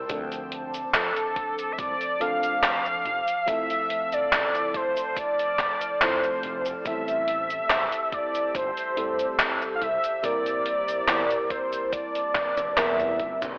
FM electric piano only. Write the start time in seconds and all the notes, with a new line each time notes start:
Already playing: G3 A#3 C4 E4 A#4
0.08 F3 A3 C4 D4 A4
2.20 F3 A3 C4 D4 A4
3.46 F3 A3 C4 E4 A4
6.01 F3 A3 C4 E4 A4
6.84 G3 A3 C4 E4 A4
8.96 G3 A3 C4 E4 A4
10.23 G3 A#3 C4 E4 A#4
12.76 G3 A#3 C4 E4 A#4